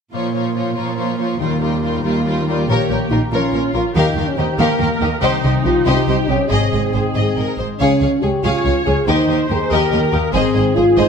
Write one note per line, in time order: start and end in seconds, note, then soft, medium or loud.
0.12 1.41 A#2 soft
0.12 0.69 A#2 soft
0.12 0.33 F3 soft
0.12 0.33 F4 soft
0.12 0.33 C#5 soft
0.34 0.55 F3 soft
0.34 1.18 C#4 soft
0.34 0.54 F4 soft
0.34 0.54 C#5 soft
0.55 0.76 F3 soft
0.55 0.97 F4 soft
0.55 0.74 F4 soft
0.55 0.75 C#5 soft
0.75 1.33 A#2 soft
0.75 0.97 F3 soft
0.75 0.96 F4 soft
0.75 3.10 A#4 soft
0.75 0.96 C#5 soft
0.97 1.18 F3 soft
0.97 1.18 F4 soft
0.97 1.81 F4 soft
0.97 1.18 C#5 soft
1.19 1.40 F3 soft
1.19 1.42 C#4 soft
1.19 1.39 F4 soft
1.19 1.39 C#5 soft
1.39 1.96 D#2 soft
1.39 2.70 D#3 soft
1.39 1.60 G3 soft
1.39 1.61 F4 soft
1.39 1.59 A#4 soft
1.60 1.82 G3 soft
1.60 2.46 A#3 soft
1.60 1.81 F4 soft
1.60 1.80 A#4 soft
1.82 2.03 G3 soft
1.82 2.25 F4 soft
1.82 2.03 F4 soft
1.82 2.02 A#4 soft
2.03 2.61 D#2 soft
2.03 2.25 G3 soft
2.03 2.26 F4 soft
2.03 2.71 G4 soft
2.03 2.24 A#4 soft
2.25 2.46 G3 soft
2.25 4.16 F4 soft
2.25 2.47 F4 soft
2.25 2.46 A#4 soft
2.47 2.68 G3 soft
2.47 5.24 A#3 soft
2.47 2.69 F4 soft
2.47 2.68 A#4 soft
2.69 2.77 A#1 soft
2.69 2.77 A#2 soft
2.69 3.97 A#2 soft
2.69 3.10 A#3 soft
2.69 3.29 G4 soft
2.69 2.89 A#4 soft
2.69 2.89 C#5 soft
2.89 2.98 A#1 soft
2.89 2.97 A#2 soft
2.89 3.97 C#4 soft
2.89 2.99 A#4 soft
2.89 2.98 C#5 soft
3.11 3.19 A#1 soft
3.11 3.19 A#2 soft
3.11 3.21 D#4 soft
3.11 3.19 F4 soft
3.11 3.19 A#4 soft
3.11 4.36 A#4 soft
3.11 3.20 A#4 soft
3.32 3.40 A#1 soft
3.32 3.40 A#2 soft
3.32 3.74 C#4 soft
3.32 3.96 F4 soft
3.32 3.52 A#4 soft
3.32 3.73 C#5 soft
3.32 3.52 C#5 soft
3.52 3.61 A#1 soft
3.52 3.61 A#2 soft
3.52 3.62 A#4 soft
3.52 3.62 C#5 soft
3.52 4.58 F5 soft
3.74 3.82 A#1 soft
3.74 3.82 A#2 soft
3.74 3.84 F4 soft
3.74 3.83 F4 soft
3.74 3.83 A#4 soft
3.74 3.97 C#5 soft
3.95 4.03 D#2 soft
3.95 4.03 D#3 soft
3.95 5.24 D#3 soft
3.95 4.27 D#4 medium
3.95 4.15 G4 soft
3.95 4.58 G4 soft
3.95 4.16 A#4 soft
3.95 4.15 F5 soft
4.16 4.24 D#2 soft
4.16 4.25 D#3 soft
4.16 5.24 F4 soft
4.16 4.26 G4 soft
4.16 4.26 A#4 soft
4.16 4.25 F5 soft
4.28 4.38 C#4 soft
4.37 4.45 D#2 soft
4.37 4.46 D#3 soft
4.37 4.59 C4 medium
4.37 4.47 G4 soft
4.37 5.24 A#4 soft
4.37 4.46 D#5 soft
4.58 4.67 D#2 soft
4.58 4.67 D#3 soft
4.58 5.00 A#3 medium
4.58 4.79 G4 medium
4.58 5.22 A#4 soft
4.58 4.79 A#4 soft
4.58 4.79 F5 soft
4.58 5.00 F5 soft
4.80 4.88 D#2 soft
4.80 4.88 D#3 soft
4.80 4.88 G4 soft
4.80 4.88 A#4 soft
4.80 4.88 F5 soft
4.80 6.06 G5 soft
5.01 5.09 D#2 soft
5.01 5.09 D#3 soft
5.01 5.11 A#3 medium
5.01 5.10 G4 soft
5.01 5.10 D#5 soft
5.01 5.24 F5 soft
5.22 5.30 C2 medium
5.22 6.52 C3 soft
5.22 5.31 C3 medium
5.22 5.64 C4 medium
5.22 5.84 D#4 soft
5.22 5.42 G4 medium
5.22 5.42 C5 medium
5.22 5.42 D#5 medium
5.44 5.52 C2 soft
5.44 5.52 C3 soft
5.44 6.71 D#4 soft
5.44 5.53 G4 soft
5.44 5.53 C5 soft
5.44 5.52 D#5 soft
5.65 5.73 C2 soft
5.65 5.73 C3 soft
5.65 5.86 F4 medium
5.65 5.74 G4 soft
5.65 7.82 C5 soft
5.65 5.73 C5 soft
5.86 5.94 C2 medium
5.86 5.95 C3 medium
5.86 6.18 D#4 medium
5.86 6.06 G4 medium
5.86 6.51 G4 medium
5.86 6.06 C5 medium
5.86 6.06 D#5 soft
5.86 6.28 D#5 soft
6.07 6.15 C2 soft
6.07 6.16 C3 soft
6.07 6.17 G4 soft
6.07 6.16 C5 soft
6.07 6.16 D#5 soft
6.07 6.52 G5 soft
6.19 6.29 D#4 medium
6.28 6.37 C2 soft
6.28 6.37 C3 soft
6.28 6.51 C#4 medium
6.28 6.39 G4 soft
6.28 6.36 C5 soft
6.28 6.93 D#5 soft
6.50 6.59 G#1 soft
6.50 7.82 G#2 soft
6.50 6.58 G#2 soft
6.50 7.57 C4 medium
6.50 7.46 G#4 soft
6.50 6.71 G#4 soft
6.50 6.70 D#5 soft
6.50 6.71 D#5 soft
6.71 6.81 G#1 soft
6.71 6.81 G#2 soft
6.71 7.82 D#4 soft
6.71 6.81 G#4 soft
6.71 6.79 D#5 soft
6.71 6.81 D#5 soft
6.93 7.03 G#1 soft
6.93 7.02 G#2 soft
6.93 7.03 G#4 soft
6.93 7.01 C5 soft
6.93 7.03 C5 soft
6.93 7.57 D#5 soft
7.15 7.24 G#1 soft
7.15 7.24 G#2 soft
7.15 9.09 G#4 soft
7.15 7.36 G#4 soft
7.15 7.35 D#5 soft
7.36 7.46 G#1 soft
7.36 7.46 G#2 soft
7.36 7.59 A#4 soft
7.36 7.44 D#5 soft
7.36 8.63 G#5 soft
7.58 7.67 G#1 soft
7.58 7.67 G#2 soft
7.58 7.66 C5 soft
7.58 7.82 D#5 soft
7.80 7.88 C#2 soft
7.80 9.09 C#3 soft
7.80 8.20 C#4 medium
7.80 8.00 G#4 soft
7.80 8.00 C#5 soft
7.80 8.00 F5 soft
8.01 8.09 C#2 soft
8.01 9.09 F4 soft
8.01 8.09 G#4 soft
8.01 8.09 C#5 soft
8.01 8.09 F5 soft
8.22 8.31 C#2 soft
8.22 8.32 C#2 soft
8.22 8.44 G4 medium
8.22 8.31 G#4 soft
8.22 8.30 C#5 soft
8.22 9.09 C#5 soft
8.44 8.52 C#2 soft
8.44 8.87 F4 medium
8.44 8.63 G#4 soft
8.44 8.63 C#5 soft
8.44 9.04 C#5 soft
8.44 8.64 F5 soft
8.44 8.85 F5 soft
8.64 8.74 C#2 soft
8.64 8.73 G#4 soft
8.64 8.72 C#5 soft
8.64 8.73 F5 soft
8.64 9.09 G#5 soft
8.86 8.95 C#2 soft
8.86 9.07 G#4 medium
8.86 8.95 G#4 soft
8.86 8.95 C#5 soft
8.86 9.09 F5 soft
9.07 9.16 D#2 soft
9.07 9.16 D#2 medium
9.07 10.35 D#3 soft
9.07 9.49 D#4 medium
9.07 9.28 G4 soft
9.07 9.27 A#4 soft
9.07 9.70 C5 soft
9.07 9.28 D#5 soft
9.28 9.36 D#2 soft
9.28 9.37 D#2 soft
9.28 10.54 D#4 soft
9.28 9.38 G4 soft
9.28 9.38 A#4 soft
9.28 9.37 D#5 soft
9.49 9.58 D#2 soft
9.49 9.59 G4 soft
9.49 9.71 G#4 medium
9.49 10.35 A#4 soft
9.49 9.59 A#4 soft
9.70 9.79 D#2 medium
9.70 9.79 D#2 soft
9.70 10.13 G4 medium
9.70 9.91 G4 medium
9.70 10.34 A#4 medium
9.70 9.90 A#4 soft
9.70 10.12 D#5 soft
9.70 9.91 D#5 medium
9.91 10.00 D#2 soft
9.91 10.00 G4 soft
9.91 9.99 A#4 soft
9.91 10.00 D#5 soft
9.91 10.36 G5 soft
10.12 10.21 D#2 soft
10.12 10.35 A#3 medium
10.12 10.20 G4 soft
10.12 10.21 A#4 soft
10.12 10.97 D#5 soft
10.33 10.42 G#1 medium
10.33 11.09 G#2 soft
10.33 10.42 G#2 medium
10.33 10.76 C4 medium
10.33 10.53 G#4 medium
10.33 10.97 G#4 soft
10.33 10.53 C5 medium
10.33 10.54 D#5 soft
10.56 10.64 G#1 soft
10.56 10.64 G#2 soft
10.56 10.64 G#4 soft
10.56 10.64 C5 soft
10.56 10.64 D#5 soft
10.76 10.85 G#1 soft
10.76 10.85 G#2 soft
10.76 10.98 F4 medium
10.76 10.85 G#4 soft
10.76 11.09 C5 soft
10.76 10.85 C5 soft
10.97 11.06 G#1 medium
10.97 11.06 G#2 soft
10.97 11.09 D#4 medium
10.97 11.09 G#4 soft
10.97 11.09 C5 soft
10.97 11.09 D#5 soft